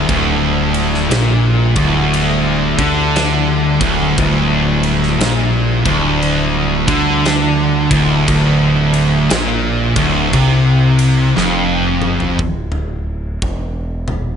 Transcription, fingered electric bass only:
0.09 D1
1.11 A#1
1.76 D1
2.79 D2
3.81 D1
4.18 D1
5.20 A#1
5.86 D1
6.89 D2
7.91 D1
8.28 D1
9.31 A#1
9.96 D1
10.34 C2
11.37 F1
12.40 D1
13.42 E1

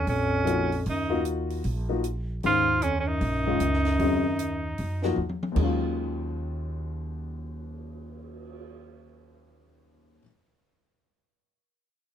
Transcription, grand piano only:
0.44 F3 A#3 D#4 F#4
1.09 A#3 D#4 F4 F#4
1.89 F3 A#3 D#4 F#4
2.44 D#3 G#3 C#4 F4
3.46 D#3 G#3 C#4 F4
4.00 C#3 F#3 C4 D#4
5.04 F3 A#3 D#4 F#4
5.52 D#2 D#3
5.56 F#3 G#3
5.61 C#4 F4

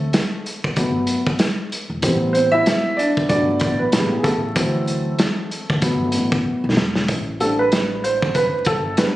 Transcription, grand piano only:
Already playing: A3 A4
0.76 F#3 A3 B3
2.03 G3 B3 C4
2.33 C4 C5
2.52 E4 E5
2.97 D4 D5
3.29 F#3 A3 B3 D4 D5
3.79 B3 B4
3.93 C#3 G3 B3
4.17 G#4
4.23 A3 A4
4.56 E3 F#3 C4
5.82 F#3 A3 B3
7.40 G3 A3 C4 D4 A4
7.59 B4
8.04 C5
8.35 B4
8.67 A4
8.98 G3 B3 C4 D4 B4

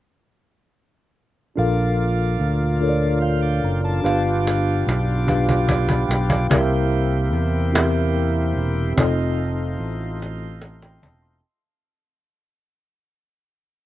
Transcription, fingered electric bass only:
1.58 A#1
2.40 D2
3.64 F#1
4.04 G1
4.87 B1
6.09 B1
6.51 C2
7.33 E2
8.56 E1
8.98 F1
9.79 A1
11.03 E1

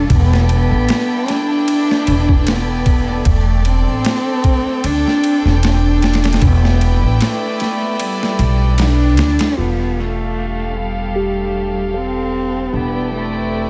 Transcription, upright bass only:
0.10 E1
0.71 A1
2.08 E1
3.26 E1
3.87 A1
4.84 D2
5.45 E1
6.42 E1
7.03 A1
8.39 B1
9.18 D2
9.58 E1
12.73 E1

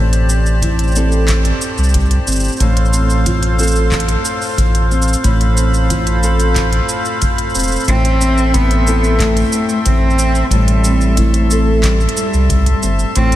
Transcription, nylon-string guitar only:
Already playing: A2 C4 E4 A4
0.29 C4
0.63 E4
0.96 C4 E4 A4
2.27 C4
2.60 A2
2.93 C4
3.26 F4
3.59 C4 F4 A4
4.91 C4
5.24 A2
5.57 C4
5.90 F4
6.23 C4 F4 A4
7.55 C4
7.88 A2
8.21 C4
8.54 E4
8.87 E4 A4
10.19 C4
10.51 A2
10.85 C4
11.18 E4
11.51 C4 E4 A4
12.83 C4
13.16 A2

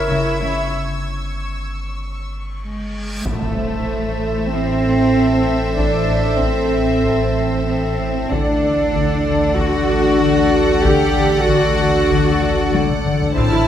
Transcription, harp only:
0.10 C#3
0.41 C#4
3.26 A2
3.57 A2
3.89 A2
4.20 A2
4.53 A2
4.85 A3
5.17 A2
5.48 A2
5.79 A2
6.12 A2
6.43 A2
6.74 A2
7.06 A2
7.37 A3
7.69 A2
8.00 A2
8.31 D3
8.63 D3
8.95 D3
9.27 D3
9.58 D3
9.89 D4
10.22 D3
10.53 D3
10.85 D3
11.16 D3
11.48 D3
11.79 D3
12.10 D3
12.43 D4
12.74 D3
13.05 D3
13.36 A2

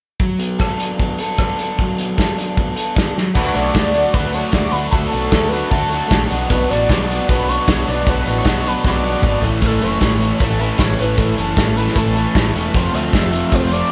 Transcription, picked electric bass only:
3.35 D2
3.55 B1
3.75 D2
4.14 D2
4.53 D2
4.73 D2
4.92 D2
5.14 B1
5.32 D2
5.72 D2
6.11 A#1
6.31 B1
6.50 B1
6.71 A1
6.90 B1
7.29 B1
7.68 B1
7.88 B1
8.07 B1
8.26 A1
8.45 B1
8.85 B1
9.23 G#1
9.44 A1
9.62 A1
9.83 F#1
10.02 A1
10.40 A1
10.79 A1
11.00 A1
11.18 A1
11.38 F#1
11.57 A1
11.96 A1
12.35 A1
12.54 E1
12.75 F1
12.94 D2
13.13 F1
13.52 F1

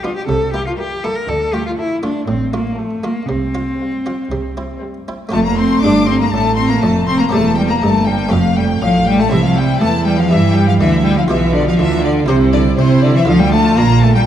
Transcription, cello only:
0.03 F4
0.16 G4
0.28 A4
0.53 G4
0.66 F4
0.79 G4
1.04 A4
1.16 A#4
1.28 A4
1.53 G4
1.66 F4
1.78 E4
2.04 D4
2.28 C4
2.53 A#3
2.78 A3
3.04 A#3
3.29 C4
5.33 A3
5.46 A#3
5.58 C4
5.83 D4
6.08 C4
6.21 A#3
6.33 A3
6.57 C4
6.69 A#3
6.82 A3
7.07 C4
7.20 A#3
7.32 A3
7.57 G3
7.70 A#3
7.82 A3
8.07 G3
8.31 F3
8.57 G3
8.82 F3
9.07 G3
9.20 A3
9.32 E3
9.43 F3
9.56 G3
9.80 A3
10.05 G3
10.17 F3
10.29 E3
10.54 G3
10.67 F3
10.79 E3
11.03 G3
11.16 F3
11.28 E3
11.53 D3
11.66 F3
11.77 E3
12.02 D3
12.28 C3
12.52 D3
12.76 C3
13.02 D3
13.14 E3
13.26 F3
13.39 G3
13.52 A3
13.77 A#3
14.03 A3
14.16 G3

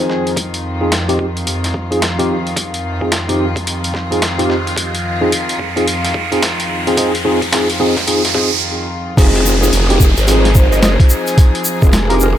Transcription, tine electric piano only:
Already playing: C4 D#4 F4 C5
0.81 C4 D#4 F4 G#4
1.09 C4 D#4 F4 G4
1.91 C4 D#4 F4 G#4
2.19 C4 D#4 F4 G4
3.01 C4 D#4 F4 G#4
3.29 C4 D#4 F4 G4
4.11 C4 D#4 F4 G#4
4.39 C4 D#4 F4 G4
5.21 C4 D#4 F4 G#4
5.76 C4 D#4 F4 G#4
6.32 C4 D#4 F4 G#4
6.87 C4 D#4 F4 G#4
6.98 C4 D#4 F4 G#4
7.25 C4 D#4 F4 G#4
7.52 C4 D#4 F4 G#4
7.80 C4 D#4 F4 G#4
8.07 C4 D#4 F4 G#4
8.35 C4 D#4 F4 G#4
9.18 C4 D#4 F4 G#4
9.62 C4 D#4 F4 G#4
9.90 C4 D#4 F4 G4
10.27 C4 D#4 F4 G#4
10.55 C4 D#4 F4 C5
11.82 C4 D#4 F4 G#4
12.09 C4 D#4 F4 G4

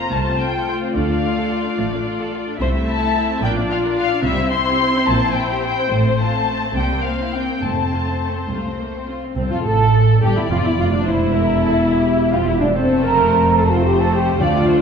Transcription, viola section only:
Already playing: A#3 F4
0.12 A3
2.60 A3 E4
3.43 D4 F4
4.24 C4 E4
5.91 A3 C4
6.76 A#3
7.62 A3
8.49 A3
8.79 A#3
9.08 C4
9.37 C4
9.50 F4
9.64 A4
10.22 G4
10.36 E4
10.50 F4
10.64 E4
10.78 F4
10.93 D4
11.06 E4
12.32 F4
12.46 E4
12.60 D4
12.74 C4
13.02 A#4
13.58 A4
13.72 F4
13.86 G4
13.99 A4
14.13 G4
14.41 F4

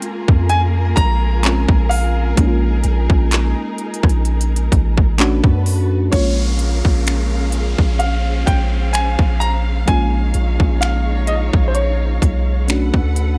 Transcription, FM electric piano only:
Already playing: G#3 C4 C#4 F4
1.43 G#3 C4 C#4 F4
2.35 G#3 A#3 C#4
2.41 D#4
2.47 F4
5.18 A3 C#4 D4 F#4
6.11 G#3 A#3 C#4
6.16 F4
9.86 G3 A#3 C#4
9.91 G#3 F4
12.68 A3 C#4 D4 F#4

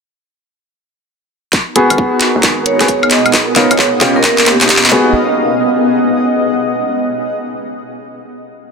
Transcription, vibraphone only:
2.66 C#5
3.11 D#5
3.56 C#5
3.71 C#5
4.16 A#4
4.24 A#4
4.46 G4
4.61 G4

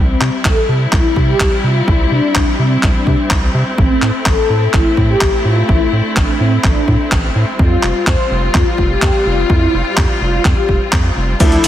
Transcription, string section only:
Already playing: G3 C4 E4
3.78 A3 E4
7.59 G3 F4
11.40 D3 F3 D4 E4 A4

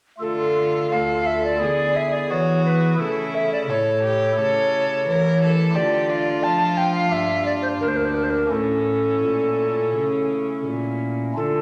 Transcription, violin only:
0.23 F4
0.93 A4
1.63 G#4
2.31 F#4
3.00 E4
3.70 A4
4.03 G4
4.39 A4
5.08 A#4
5.42 A4
5.76 G4
6.10 F4
7.82 D4
8.52 C#4

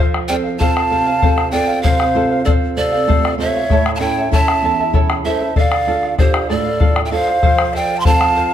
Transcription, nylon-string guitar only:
0.00 F3
0.30 C4 F4 A4
0.60 C4 F4 A4
0.91 C3
1.23 C4 F4 A4
1.53 C4 F4 A4
1.84 C3
2.15 C4 F4 A4
2.45 C4 F4 A4
2.77 C3
3.07 A3 F4 A4
3.38 C3 F4 A4
3.69 A2
3.99 C#4 E4 A4
4.31 C#4 E4 A4
4.62 E2
4.93 C#4 E4 A4
5.25 C#4 E4 A4
5.56 D3
5.87 D4 F4 A4
6.19 D4 F4 A4
6.50 A2
6.81 D4 F4 A4
7.11 D4 F4 A4
7.44 F3
8.06 C4 F4 A4

